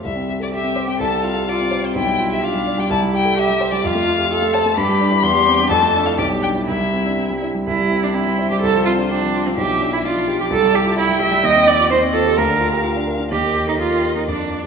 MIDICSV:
0, 0, Header, 1, 4, 480
1, 0, Start_track
1, 0, Tempo, 476190
1, 54, Time_signature, 2, 2, 24, 8
1, 2454, Tempo, 467290
1, 5814, Tempo, 492611
1, 7734, Tempo, 470588
1, 13494, Tempo, 481541
1, 14833, End_track
2, 0, Start_track
2, 0, Title_t, "Violin"
2, 0, Program_c, 0, 40
2, 48, Note_on_c, 0, 76, 77
2, 386, Note_off_c, 0, 76, 0
2, 427, Note_on_c, 0, 74, 64
2, 473, Note_off_c, 0, 74, 0
2, 543, Note_on_c, 0, 76, 79
2, 891, Note_off_c, 0, 76, 0
2, 903, Note_on_c, 0, 79, 72
2, 1016, Note_off_c, 0, 79, 0
2, 1021, Note_on_c, 0, 81, 84
2, 1254, Note_off_c, 0, 81, 0
2, 1261, Note_on_c, 0, 77, 76
2, 1500, Note_on_c, 0, 74, 84
2, 1515, Note_off_c, 0, 77, 0
2, 1870, Note_on_c, 0, 72, 56
2, 1885, Note_off_c, 0, 74, 0
2, 1977, Note_off_c, 0, 72, 0
2, 1983, Note_on_c, 0, 79, 83
2, 2330, Note_off_c, 0, 79, 0
2, 2344, Note_on_c, 0, 76, 75
2, 2460, Note_on_c, 0, 77, 74
2, 2476, Note_off_c, 0, 76, 0
2, 2825, Note_on_c, 0, 79, 81
2, 2841, Note_off_c, 0, 77, 0
2, 2931, Note_off_c, 0, 79, 0
2, 2937, Note_on_c, 0, 81, 97
2, 3019, Note_off_c, 0, 81, 0
2, 3186, Note_on_c, 0, 79, 89
2, 3429, Note_on_c, 0, 76, 100
2, 3445, Note_off_c, 0, 79, 0
2, 3781, Note_off_c, 0, 76, 0
2, 3787, Note_on_c, 0, 74, 87
2, 3899, Note_on_c, 0, 77, 103
2, 3914, Note_off_c, 0, 74, 0
2, 4614, Note_on_c, 0, 81, 95
2, 4630, Note_off_c, 0, 77, 0
2, 4854, Note_on_c, 0, 83, 103
2, 4870, Note_off_c, 0, 81, 0
2, 5325, Note_on_c, 0, 84, 115
2, 5340, Note_off_c, 0, 83, 0
2, 5805, Note_off_c, 0, 84, 0
2, 5811, Note_on_c, 0, 81, 98
2, 6161, Note_on_c, 0, 77, 83
2, 6175, Note_off_c, 0, 81, 0
2, 6274, Note_off_c, 0, 77, 0
2, 6280, Note_on_c, 0, 74, 94
2, 6358, Note_off_c, 0, 74, 0
2, 6514, Note_on_c, 0, 79, 84
2, 6592, Note_off_c, 0, 79, 0
2, 6758, Note_on_c, 0, 76, 79
2, 7481, Note_off_c, 0, 76, 0
2, 8214, Note_on_c, 0, 72, 74
2, 9626, Note_off_c, 0, 72, 0
2, 9669, Note_on_c, 0, 76, 77
2, 10153, Note_on_c, 0, 74, 70
2, 10169, Note_off_c, 0, 76, 0
2, 11108, Note_off_c, 0, 74, 0
2, 11114, Note_on_c, 0, 79, 99
2, 12045, Note_off_c, 0, 79, 0
2, 12063, Note_on_c, 0, 75, 85
2, 12540, Note_on_c, 0, 77, 85
2, 12556, Note_off_c, 0, 75, 0
2, 13484, Note_off_c, 0, 77, 0
2, 13490, Note_on_c, 0, 75, 78
2, 14453, Note_on_c, 0, 74, 55
2, 14468, Note_off_c, 0, 75, 0
2, 14833, Note_off_c, 0, 74, 0
2, 14833, End_track
3, 0, Start_track
3, 0, Title_t, "Cello"
3, 0, Program_c, 1, 42
3, 525, Note_on_c, 1, 67, 66
3, 975, Note_off_c, 1, 67, 0
3, 999, Note_on_c, 1, 69, 70
3, 1480, Note_off_c, 1, 69, 0
3, 1489, Note_on_c, 1, 65, 66
3, 1964, Note_off_c, 1, 65, 0
3, 1969, Note_on_c, 1, 64, 65
3, 2453, Note_on_c, 1, 62, 65
3, 2469, Note_off_c, 1, 64, 0
3, 2927, Note_off_c, 1, 62, 0
3, 2933, Note_on_c, 1, 64, 72
3, 3413, Note_on_c, 1, 67, 78
3, 3429, Note_off_c, 1, 64, 0
3, 3890, Note_off_c, 1, 67, 0
3, 3896, Note_on_c, 1, 65, 80
3, 4366, Note_off_c, 1, 65, 0
3, 4375, Note_on_c, 1, 69, 85
3, 4845, Note_off_c, 1, 69, 0
3, 4852, Note_on_c, 1, 67, 84
3, 5321, Note_off_c, 1, 67, 0
3, 5331, Note_on_c, 1, 67, 83
3, 5811, Note_on_c, 1, 69, 83
3, 5826, Note_off_c, 1, 67, 0
3, 6275, Note_on_c, 1, 67, 77
3, 6290, Note_off_c, 1, 69, 0
3, 6748, Note_off_c, 1, 67, 0
3, 6753, Note_on_c, 1, 64, 61
3, 7478, Note_off_c, 1, 64, 0
3, 7733, Note_on_c, 1, 64, 84
3, 8098, Note_on_c, 1, 62, 75
3, 8113, Note_off_c, 1, 64, 0
3, 8204, Note_on_c, 1, 64, 80
3, 8219, Note_off_c, 1, 62, 0
3, 8572, Note_off_c, 1, 64, 0
3, 8577, Note_on_c, 1, 67, 74
3, 8686, Note_off_c, 1, 67, 0
3, 8692, Note_on_c, 1, 69, 96
3, 8927, Note_off_c, 1, 69, 0
3, 8933, Note_on_c, 1, 65, 80
3, 9015, Note_off_c, 1, 65, 0
3, 9183, Note_on_c, 1, 62, 86
3, 9555, Note_on_c, 1, 60, 64
3, 9571, Note_off_c, 1, 62, 0
3, 9663, Note_off_c, 1, 60, 0
3, 9669, Note_on_c, 1, 67, 86
3, 10022, Note_off_c, 1, 67, 0
3, 10034, Note_on_c, 1, 64, 81
3, 10081, Note_off_c, 1, 64, 0
3, 10153, Note_on_c, 1, 65, 78
3, 10504, Note_off_c, 1, 65, 0
3, 10515, Note_on_c, 1, 67, 75
3, 10561, Note_off_c, 1, 67, 0
3, 10637, Note_on_c, 1, 69, 104
3, 10871, Note_on_c, 1, 67, 91
3, 10886, Note_off_c, 1, 69, 0
3, 11097, Note_off_c, 1, 67, 0
3, 11103, Note_on_c, 1, 64, 95
3, 11337, Note_off_c, 1, 64, 0
3, 11347, Note_on_c, 1, 76, 101
3, 11579, Note_on_c, 1, 75, 115
3, 11595, Note_off_c, 1, 76, 0
3, 11814, Note_on_c, 1, 74, 102
3, 11829, Note_off_c, 1, 75, 0
3, 12042, Note_off_c, 1, 74, 0
3, 12048, Note_on_c, 1, 72, 107
3, 12129, Note_off_c, 1, 72, 0
3, 12285, Note_on_c, 1, 69, 94
3, 12525, Note_on_c, 1, 70, 91
3, 12540, Note_off_c, 1, 69, 0
3, 13007, Note_off_c, 1, 70, 0
3, 13494, Note_on_c, 1, 67, 94
3, 13821, Note_off_c, 1, 67, 0
3, 13851, Note_on_c, 1, 63, 68
3, 13897, Note_off_c, 1, 63, 0
3, 13955, Note_on_c, 1, 65, 78
3, 14313, Note_off_c, 1, 65, 0
3, 14318, Note_on_c, 1, 63, 58
3, 14434, Note_off_c, 1, 63, 0
3, 14440, Note_on_c, 1, 62, 63
3, 14833, Note_off_c, 1, 62, 0
3, 14833, End_track
4, 0, Start_track
4, 0, Title_t, "Grand piano"
4, 0, Program_c, 2, 0
4, 0, Control_c, 2, 64, 127
4, 45, Note_on_c, 2, 36, 54
4, 75, Control_c, 2, 64, 0
4, 158, Note_on_c, 2, 60, 42
4, 251, Control_c, 2, 64, 127
4, 284, Note_on_c, 2, 67, 45
4, 359, Note_off_c, 2, 60, 0
4, 402, Note_on_c, 2, 69, 39
4, 481, Note_off_c, 2, 67, 0
4, 524, Note_on_c, 2, 67, 48
4, 528, Note_off_c, 2, 69, 0
4, 645, Note_on_c, 2, 60, 46
4, 721, Note_off_c, 2, 67, 0
4, 766, Note_on_c, 2, 72, 49
4, 841, Note_off_c, 2, 60, 0
4, 881, Note_on_c, 2, 60, 46
4, 962, Note_off_c, 2, 72, 0
4, 980, Note_off_c, 2, 36, 0
4, 1005, Note_on_c, 2, 36, 61
4, 1007, Note_off_c, 2, 60, 0
4, 1032, Control_c, 2, 64, 0
4, 1129, Note_on_c, 2, 60, 42
4, 1192, Control_c, 2, 64, 127
4, 1249, Note_on_c, 2, 65, 46
4, 1325, Note_off_c, 2, 60, 0
4, 1373, Note_on_c, 2, 67, 39
4, 1446, Note_off_c, 2, 65, 0
4, 1493, Note_on_c, 2, 65, 51
4, 1496, Note_off_c, 2, 67, 0
4, 1617, Note_on_c, 2, 60, 48
4, 1689, Note_off_c, 2, 65, 0
4, 1727, Note_on_c, 2, 72, 53
4, 1810, Note_off_c, 2, 60, 0
4, 1848, Note_on_c, 2, 60, 51
4, 1924, Note_off_c, 2, 72, 0
4, 1944, Note_off_c, 2, 36, 0
4, 1970, Note_on_c, 2, 35, 60
4, 1972, Note_off_c, 2, 60, 0
4, 1995, Control_c, 2, 64, 0
4, 2085, Note_on_c, 2, 55, 47
4, 2134, Control_c, 2, 64, 127
4, 2210, Note_on_c, 2, 65, 51
4, 2281, Note_off_c, 2, 55, 0
4, 2331, Note_on_c, 2, 67, 42
4, 2403, Note_off_c, 2, 65, 0
4, 2447, Note_on_c, 2, 65, 50
4, 2451, Note_off_c, 2, 67, 0
4, 2572, Note_on_c, 2, 55, 50
4, 2644, Note_off_c, 2, 65, 0
4, 2692, Note_on_c, 2, 74, 52
4, 2766, Note_off_c, 2, 55, 0
4, 2808, Note_on_c, 2, 55, 55
4, 2886, Note_off_c, 2, 74, 0
4, 2903, Note_off_c, 2, 35, 0
4, 2932, Note_off_c, 2, 55, 0
4, 2932, Note_on_c, 2, 36, 69
4, 2956, Control_c, 2, 64, 0
4, 3056, Note_on_c, 2, 55, 50
4, 3149, Control_c, 2, 64, 127
4, 3173, Note_on_c, 2, 67, 56
4, 3251, Note_off_c, 2, 55, 0
4, 3294, Note_on_c, 2, 69, 47
4, 3370, Note_off_c, 2, 67, 0
4, 3417, Note_on_c, 2, 67, 56
4, 3418, Note_off_c, 2, 69, 0
4, 3540, Note_on_c, 2, 55, 53
4, 3611, Note_off_c, 2, 67, 0
4, 3658, Note_on_c, 2, 72, 59
4, 3732, Note_off_c, 2, 55, 0
4, 3777, Note_on_c, 2, 55, 54
4, 3851, Note_off_c, 2, 72, 0
4, 3869, Note_off_c, 2, 36, 0
4, 3898, Note_off_c, 2, 55, 0
4, 3899, Note_on_c, 2, 41, 70
4, 3920, Control_c, 2, 64, 0
4, 4012, Note_on_c, 2, 57, 54
4, 4091, Control_c, 2, 64, 127
4, 4134, Note_on_c, 2, 65, 55
4, 4206, Note_off_c, 2, 57, 0
4, 4252, Note_on_c, 2, 67, 48
4, 4327, Note_off_c, 2, 65, 0
4, 4374, Note_off_c, 2, 67, 0
4, 4374, Note_on_c, 2, 65, 57
4, 4497, Note_on_c, 2, 57, 54
4, 4567, Note_off_c, 2, 65, 0
4, 4623, Note_on_c, 2, 72, 60
4, 4688, Note_off_c, 2, 57, 0
4, 4739, Note_on_c, 2, 57, 64
4, 4811, Note_off_c, 2, 72, 0
4, 4827, Note_off_c, 2, 41, 0
4, 4857, Note_off_c, 2, 57, 0
4, 4857, Note_on_c, 2, 43, 71
4, 4873, Control_c, 2, 64, 0
4, 4973, Note_on_c, 2, 55, 55
4, 5036, Control_c, 2, 64, 127
4, 5091, Note_on_c, 2, 62, 58
4, 5164, Note_off_c, 2, 55, 0
4, 5211, Note_on_c, 2, 64, 49
4, 5282, Note_off_c, 2, 62, 0
4, 5318, Note_off_c, 2, 43, 0
4, 5324, Note_on_c, 2, 40, 72
4, 5331, Note_off_c, 2, 64, 0
4, 5350, Control_c, 2, 64, 0
4, 5449, Note_on_c, 2, 55, 59
4, 5503, Control_c, 2, 64, 127
4, 5564, Note_on_c, 2, 60, 59
4, 5642, Note_off_c, 2, 55, 0
4, 5693, Note_on_c, 2, 62, 55
4, 5761, Note_off_c, 2, 60, 0
4, 5794, Note_off_c, 2, 40, 0
4, 5806, Note_on_c, 2, 41, 76
4, 5813, Note_off_c, 2, 62, 0
4, 5833, Control_c, 2, 64, 0
4, 5929, Note_on_c, 2, 57, 56
4, 5960, Control_c, 2, 64, 127
4, 6048, Note_on_c, 2, 62, 50
4, 6113, Note_off_c, 2, 57, 0
4, 6166, Note_on_c, 2, 64, 48
4, 6231, Note_off_c, 2, 62, 0
4, 6258, Note_off_c, 2, 41, 0
4, 6278, Note_on_c, 2, 35, 65
4, 6279, Note_off_c, 2, 64, 0
4, 6295, Control_c, 2, 64, 0
4, 6395, Note_on_c, 2, 55, 51
4, 6467, Control_c, 2, 64, 127
4, 6517, Note_on_c, 2, 62, 53
4, 6586, Note_off_c, 2, 55, 0
4, 6638, Note_on_c, 2, 64, 47
4, 6709, Note_off_c, 2, 62, 0
4, 6743, Note_off_c, 2, 35, 0
4, 6759, Note_off_c, 2, 64, 0
4, 6762, Note_on_c, 2, 36, 62
4, 6777, Control_c, 2, 64, 0
4, 6884, Note_on_c, 2, 55, 46
4, 6947, Control_c, 2, 64, 127
4, 7009, Note_on_c, 2, 60, 48
4, 7080, Note_off_c, 2, 55, 0
4, 7127, Note_on_c, 2, 62, 41
4, 7203, Note_off_c, 2, 60, 0
4, 7245, Note_on_c, 2, 60, 50
4, 7250, Note_off_c, 2, 62, 0
4, 7369, Note_on_c, 2, 55, 47
4, 7443, Note_off_c, 2, 60, 0
4, 7489, Note_on_c, 2, 64, 49
4, 7565, Note_off_c, 2, 55, 0
4, 7609, Note_on_c, 2, 55, 47
4, 7683, Note_off_c, 2, 64, 0
4, 7706, Note_off_c, 2, 36, 0
4, 7727, Note_on_c, 2, 36, 65
4, 7730, Note_off_c, 2, 55, 0
4, 7752, Control_c, 2, 64, 0
4, 7854, Note_on_c, 2, 55, 49
4, 7926, Control_c, 2, 64, 127
4, 7973, Note_on_c, 2, 60, 50
4, 8046, Note_off_c, 2, 55, 0
4, 8091, Note_on_c, 2, 62, 43
4, 8166, Note_off_c, 2, 60, 0
4, 8208, Note_on_c, 2, 60, 52
4, 8214, Note_off_c, 2, 62, 0
4, 8338, Note_on_c, 2, 55, 48
4, 8405, Note_off_c, 2, 60, 0
4, 8459, Note_on_c, 2, 64, 53
4, 8531, Note_off_c, 2, 55, 0
4, 8582, Note_on_c, 2, 55, 53
4, 8651, Note_off_c, 2, 64, 0
4, 8667, Note_off_c, 2, 36, 0
4, 8701, Note_off_c, 2, 55, 0
4, 8710, Note_on_c, 2, 36, 65
4, 8718, Control_c, 2, 64, 0
4, 8834, Note_on_c, 2, 53, 51
4, 8883, Control_c, 2, 64, 127
4, 8951, Note_on_c, 2, 60, 49
4, 9020, Note_off_c, 2, 53, 0
4, 9065, Note_on_c, 2, 62, 44
4, 9140, Note_off_c, 2, 60, 0
4, 9185, Note_off_c, 2, 62, 0
4, 9191, Note_on_c, 2, 60, 52
4, 9313, Note_on_c, 2, 53, 51
4, 9382, Note_off_c, 2, 60, 0
4, 9427, Note_on_c, 2, 65, 56
4, 9503, Note_off_c, 2, 53, 0
4, 9556, Note_on_c, 2, 53, 54
4, 9620, Note_off_c, 2, 65, 0
4, 9645, Note_off_c, 2, 36, 0
4, 9670, Note_on_c, 2, 35, 62
4, 9672, Note_off_c, 2, 53, 0
4, 9685, Control_c, 2, 64, 0
4, 9793, Note_on_c, 2, 53, 49
4, 9877, Control_c, 2, 64, 127
4, 9910, Note_on_c, 2, 62, 51
4, 9983, Note_off_c, 2, 53, 0
4, 10037, Note_on_c, 2, 64, 46
4, 10102, Note_off_c, 2, 62, 0
4, 10153, Note_off_c, 2, 64, 0
4, 10153, Note_on_c, 2, 62, 53
4, 10269, Note_on_c, 2, 53, 52
4, 10343, Note_off_c, 2, 62, 0
4, 10389, Note_on_c, 2, 67, 57
4, 10461, Note_off_c, 2, 53, 0
4, 10510, Note_on_c, 2, 53, 56
4, 10580, Note_off_c, 2, 67, 0
4, 10601, Note_off_c, 2, 35, 0
4, 10617, Note_on_c, 2, 36, 65
4, 10629, Note_off_c, 2, 53, 0
4, 10647, Control_c, 2, 64, 0
4, 10741, Note_on_c, 2, 55, 53
4, 10812, Control_c, 2, 64, 127
4, 10856, Note_on_c, 2, 64, 53
4, 10936, Note_off_c, 2, 55, 0
4, 10974, Note_on_c, 2, 65, 50
4, 11053, Note_off_c, 2, 64, 0
4, 11093, Note_on_c, 2, 64, 57
4, 11100, Note_off_c, 2, 65, 0
4, 11216, Note_on_c, 2, 55, 57
4, 11290, Note_off_c, 2, 64, 0
4, 11327, Note_on_c, 2, 67, 58
4, 11410, Note_off_c, 2, 55, 0
4, 11442, Note_on_c, 2, 55, 60
4, 11525, Note_off_c, 2, 67, 0
4, 11547, Note_off_c, 2, 36, 0
4, 11566, Note_on_c, 2, 39, 74
4, 11571, Note_off_c, 2, 55, 0
4, 11601, Control_c, 2, 64, 0
4, 11683, Note_on_c, 2, 60, 54
4, 11744, Control_c, 2, 64, 127
4, 11799, Note_on_c, 2, 63, 54
4, 11883, Note_off_c, 2, 60, 0
4, 11933, Note_on_c, 2, 65, 51
4, 12001, Note_off_c, 2, 63, 0
4, 12034, Note_off_c, 2, 39, 0
4, 12049, Note_on_c, 2, 39, 74
4, 12056, Note_off_c, 2, 65, 0
4, 12079, Control_c, 2, 64, 0
4, 12172, Note_on_c, 2, 60, 59
4, 12240, Control_c, 2, 64, 127
4, 12285, Note_on_c, 2, 65, 57
4, 12365, Note_off_c, 2, 60, 0
4, 12404, Note_on_c, 2, 67, 54
4, 12481, Note_off_c, 2, 65, 0
4, 12515, Note_off_c, 2, 39, 0
4, 12519, Note_on_c, 2, 38, 74
4, 12529, Note_off_c, 2, 67, 0
4, 12553, Control_c, 2, 64, 0
4, 12644, Note_on_c, 2, 62, 53
4, 12714, Control_c, 2, 64, 127
4, 12758, Note_on_c, 2, 65, 56
4, 12840, Note_off_c, 2, 62, 0
4, 12877, Note_on_c, 2, 67, 50
4, 12957, Note_off_c, 2, 65, 0
4, 12998, Note_on_c, 2, 65, 58
4, 13004, Note_off_c, 2, 67, 0
4, 13119, Note_on_c, 2, 62, 56
4, 13196, Note_off_c, 2, 65, 0
4, 13238, Note_on_c, 2, 70, 54
4, 13317, Note_off_c, 2, 62, 0
4, 13364, Note_on_c, 2, 62, 52
4, 13436, Note_off_c, 2, 70, 0
4, 13454, Note_off_c, 2, 38, 0
4, 13483, Note_on_c, 2, 39, 64
4, 13487, Note_off_c, 2, 62, 0
4, 13507, Control_c, 2, 64, 0
4, 13601, Note_on_c, 2, 58, 48
4, 13647, Control_c, 2, 64, 127
4, 13716, Note_on_c, 2, 67, 49
4, 13793, Note_off_c, 2, 58, 0
4, 13840, Note_on_c, 2, 69, 39
4, 13911, Note_off_c, 2, 67, 0
4, 13961, Note_off_c, 2, 69, 0
4, 13966, Note_on_c, 2, 67, 50
4, 14083, Note_on_c, 2, 58, 44
4, 14157, Note_off_c, 2, 67, 0
4, 14199, Note_on_c, 2, 70, 48
4, 14276, Note_off_c, 2, 58, 0
4, 14322, Note_on_c, 2, 58, 44
4, 14396, Note_off_c, 2, 70, 0
4, 14414, Note_off_c, 2, 39, 0
4, 14445, Note_off_c, 2, 58, 0
4, 14447, Note_on_c, 2, 41, 52
4, 14468, Control_c, 2, 64, 0
4, 14567, Note_on_c, 2, 58, 36
4, 14620, Control_c, 2, 64, 127
4, 14681, Note_on_c, 2, 65, 36
4, 14761, Note_off_c, 2, 58, 0
4, 14801, Note_on_c, 2, 67, 31
4, 14833, Note_off_c, 2, 41, 0
4, 14833, Note_off_c, 2, 65, 0
4, 14833, Note_off_c, 2, 67, 0
4, 14833, End_track
0, 0, End_of_file